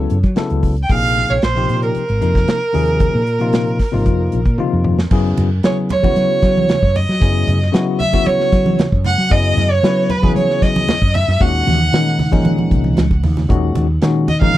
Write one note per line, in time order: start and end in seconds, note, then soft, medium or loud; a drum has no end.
0.00 0.16 C#3 medium
0.00 0.17 F#3 medium
0.00 0.17 B3 medium
0.00 0.17 E4 medium
0.00 0.17 A4 medium
0.10 0.22 F#2 medium
0.10 closed hi-hat medium
0.23 0.35 F#3 medium
0.23 kick medium
0.23 closed hi-hat soft
0.36 0.74 C#3 medium
0.36 0.74 F#3 medium
0.36 0.74 B3 medium
0.36 0.74 E4 medium
0.36 0.75 A4 medium
0.36 muted fretless electric bass stroke soft
0.36 snare medium
0.36 closed hi-hat medium
0.50 0.83 C#2 medium
0.50 closed hi-hat soft
0.63 kick medium
0.63 open hi-hat medium
0.76 closed hi-hat soft
0.82 0.92 G5 medium
0.89 1.23 A#1 medium
0.89 1.36 C3 medium
0.89 1.36 F3 medium
0.89 1.36 A#3 medium
0.89 1.37 D#4 medium
0.89 1.37 G#4 medium
0.89 1.32 F5 loud
0.89 kick medium
0.89 closed hi-hat medium
1.16 snare soft
1.16 closed hi-hat soft
1.30 1.41 A#1 medium
1.30 1.45 C#5 medium
1.42 1.65 A#1 medium
1.42 1.82 C5 medium
1.42 snare medium
1.42 closed hi-hat medium
1.55 2.02 C3 medium
1.55 2.02 F3 medium
1.55 2.02 A#3 medium
1.55 2.02 D#4 medium
1.55 2.03 G4 medium
1.55 closed hi-hat soft
1.69 1.91 A#2 medium
1.69 closed hi-hat medium
1.82 4.55 A#4 medium
1.82 closed hi-hat soft
1.95 muted fretless electric bass stroke soft
1.95 closed hi-hat medium
2.09 2.20 G#1 medium
2.09 closed hi-hat soft
2.21 2.44 F2 medium
2.21 2.59 C3 medium
2.21 2.59 F3 medium
2.21 2.59 A#3 medium
2.21 2.59 D#4 medium
2.21 2.60 A#4 medium
2.21 closed hi-hat medium
2.35 kick medium
2.35 snare soft
2.35 closed hi-hat soft
2.48 snare medium
2.48 closed hi-hat medium
2.62 closed hi-hat soft
2.73 3.08 D#2 medium
2.73 3.20 C3 medium
2.73 3.20 F3 medium
2.73 3.20 A#3 medium
2.73 3.21 D#4 medium
2.73 3.21 G#4 medium
2.73 open hi-hat medium
2.88 closed hi-hat soft
3.00 kick loud
3.00 closed hi-hat medium
3.15 3.80 A#2 medium
3.27 closed hi-hat medium
3.40 3.77 C3 medium
3.40 3.77 F3 medium
3.40 3.77 A#3 medium
3.40 3.77 D#4 medium
3.40 3.78 F4 medium
3.40 closed hi-hat soft
3.53 snare medium
3.53 closed hi-hat medium
3.67 closed hi-hat soft
3.79 kick medium
3.79 snare soft
3.79 open hi-hat medium
3.92 4.04 G#1 medium
3.92 4.38 C3 medium
3.92 4.39 F3 medium
3.92 4.39 A#3 medium
3.92 4.39 D#4 medium
3.92 4.40 F4 medium
4.06 4.28 F2 medium
4.06 kick medium
4.06 closed hi-hat medium
4.32 4.44 A#1 medium
4.32 closed hi-hat medium
4.45 4.56 A#2 medium
4.45 kick medium
4.45 closed hi-hat soft
4.58 4.95 C3 medium
4.58 4.96 F3 medium
4.58 4.96 A#3 medium
4.58 4.96 D#4 medium
4.58 4.96 F4 medium
4.58 muted fretless electric bass stroke soft
4.58 high tom soft
4.73 5.05 F2 medium
4.84 mid tom medium
4.99 snare medium
5.11 5.33 F#2 medium
5.11 5.48 C#3 medium
5.11 5.48 F#3 medium
5.11 5.49 B3 medium
5.11 5.49 E4 medium
5.11 5.49 G#4 medium
5.11 kick loud
5.11 crash medium
5.37 5.60 F#2 medium
5.37 closed hi-hat medium
5.37 low conga medium
5.63 5.91 C#3 medium
5.63 5.92 F#3 medium
5.63 6.08 F#3 medium
5.63 5.92 B3 medium
5.63 5.92 E4 medium
5.63 5.92 G#4 medium
5.63 5.76 C#5 medium
5.63 snare medium
5.63 closed hi-hat medium
5.89 6.97 C#5 medium
5.89 closed hi-hat medium
5.89 low conga medium
6.02 6.76 C#3 medium
6.02 6.77 F#3 medium
6.02 6.77 B3 medium
6.02 6.77 E4 medium
6.02 6.77 F#4 medium
6.02 kick medium
6.02 high conga medium
6.16 6.28 F#3 medium
6.16 closed hi-hat medium
6.42 6.65 F#3 medium
6.42 kick medium
6.42 snare soft
6.42 closed hi-hat medium
6.57 high conga medium
6.69 snare loud
6.69 closed hi-hat medium
6.69 low conga medium
6.83 7.04 F#2 medium
6.83 kick medium
6.96 7.74 D#5 medium
6.96 open hi-hat medium
6.96 low conga medium
7.09 7.20 F#3 loud
7.09 snare soft
7.20 7.44 F#2 medium
7.20 7.58 C#3 medium
7.20 7.58 F#3 medium
7.20 7.58 B3 medium
7.20 7.59 E4 medium
7.20 7.59 G#4 medium
7.20 kick loud
7.20 closed hi-hat medium
7.47 7.70 F#2 medium
7.47 closed hi-hat medium
7.47 low conga medium
7.62 snare soft
7.72 8.01 C#3 medium
7.72 8.01 F#3 medium
7.72 8.17 F#3 medium
7.72 8.01 B3 medium
7.72 8.01 E4 medium
7.72 8.02 F#4 medium
7.72 snare medium
7.72 closed hi-hat medium
8.00 8.28 E5 medium
8.00 open hi-hat medium
8.00 low conga medium
8.13 8.86 C#3 medium
8.13 8.87 F#3 medium
8.13 8.87 B3 medium
8.13 8.87 E4 medium
8.13 8.87 F#4 medium
8.13 kick medium
8.13 snare soft
8.13 high conga medium
8.26 8.38 F#3 medium
8.26 8.79 C#5 medium
8.26 closed hi-hat medium
8.40 snare soft
8.52 8.74 F#3 medium
8.52 kick medium
8.52 closed hi-hat medium
8.66 high conga medium
8.79 snare loud
8.79 closed hi-hat medium
8.79 low conga medium
8.92 9.14 F#2 medium
8.92 kick medium
9.04 9.33 F#5 loud
9.04 snare soft
9.04 open hi-hat medium
9.04 low conga medium
9.18 9.29 F#3 loud
9.30 9.53 F#2 medium
9.30 9.68 C#3 medium
9.30 9.68 F#3 medium
9.30 9.68 B3 medium
9.30 9.68 E4 medium
9.30 9.69 G#4 medium
9.30 9.72 D#5 loud
9.30 kick loud
9.30 closed hi-hat medium
9.57 9.79 F#2 medium
9.57 closed hi-hat medium
9.57 low conga medium
9.71 10.11 C#5 medium
9.83 10.11 C#3 medium
9.83 10.27 F#3 medium
9.83 10.11 F#3 medium
9.83 10.11 B3 medium
9.83 10.11 E4 medium
9.83 10.12 B4 medium
9.83 snare medium
9.83 closed hi-hat medium
10.10 10.35 B4 medium
10.10 closed hi-hat medium
10.10 low conga medium
10.22 10.96 C#3 medium
10.22 10.96 F#3 medium
10.22 10.96 B3 medium
10.22 10.97 E4 medium
10.22 10.97 G#4 medium
10.22 kick medium
10.22 high conga medium
10.36 10.47 F#3 medium
10.36 10.64 C#5 medium
10.36 closed hi-hat medium
10.50 snare soft
10.62 10.84 F#3 medium
10.62 11.15 D#5 medium
10.62 kick medium
10.62 snare soft
10.62 closed hi-hat medium
10.76 high conga medium
10.88 snare medium
10.88 closed hi-hat medium
10.88 low conga medium
11.02 11.23 F#2 medium
11.02 kick medium
11.14 11.42 E5 medium
11.14 open hi-hat medium
11.14 low conga medium
11.28 11.39 F#2 loud
11.28 snare soft
11.40 11.62 D#2 medium
11.40 11.77 A#2 medium
11.40 11.77 D#3 medium
11.40 11.77 G#3 medium
11.40 11.78 C#4 medium
11.40 11.78 F#4 medium
11.40 12.45 F#5 medium
11.40 kick loud
11.40 closed hi-hat medium
11.67 11.88 D#2 medium
11.67 closed hi-hat medium
11.67 high conga medium
11.67 low conga medium
11.92 12.20 A#2 medium
11.92 12.20 D#3 medium
11.92 12.36 D#3 medium
11.92 12.20 G#3 medium
11.92 12.21 C#4 medium
11.92 12.21 D#4 medium
11.92 snare loud
11.92 closed hi-hat medium
12.08 snare soft
12.19 open hi-hat medium
12.19 low conga medium
12.31 13.05 A#2 medium
12.31 13.05 D#3 medium
12.31 13.05 G#3 medium
12.31 13.05 C#4 medium
12.31 13.06 D#4 loud
12.31 kick medium
12.31 high conga medium
12.45 12.56 D#3 medium
12.45 closed hi-hat medium
12.45 high conga medium
12.58 high conga medium
12.71 12.95 C2 medium
12.71 kick medium
12.71 closed hi-hat medium
12.84 high conga medium
12.97 13.21 C#2 medium
12.97 snare medium
12.97 closed hi-hat medium
12.97 high conga medium
13.11 kick medium
13.11 high conga medium
13.23 13.47 D#2 medium
13.23 open hi-hat medium
13.23 low conga medium
13.37 snare soft
13.37 low conga medium
13.49 13.71 D#2 medium
13.49 13.86 A#2 medium
13.49 13.86 D#3 medium
13.49 13.86 G#3 medium
13.49 13.87 C#4 medium
13.49 13.87 F#4 medium
13.49 kick loud
13.49 closed hi-hat medium
13.75 13.98 D#2 medium
13.75 closed hi-hat medium
13.75 low conga medium
14.01 14.29 A#2 medium
14.01 14.29 D#3 medium
14.01 14.45 D#3 medium
14.01 14.29 G#3 medium
14.01 14.30 C#4 medium
14.01 14.30 F#4 medium
14.01 snare medium
14.01 closed hi-hat medium
14.28 14.41 D#5 medium
14.28 closed hi-hat medium
14.28 low conga medium
14.41 14.58 A#2 medium
14.41 14.58 D#3 medium
14.41 14.58 G#3 medium
14.41 14.58 C#4 medium
14.41 14.58 D#4 medium
14.41 14.58 F5 medium
14.41 kick medium
14.41 snare soft
14.41 high conga medium
14.54 14.58 D#3 medium
14.54 closed hi-hat medium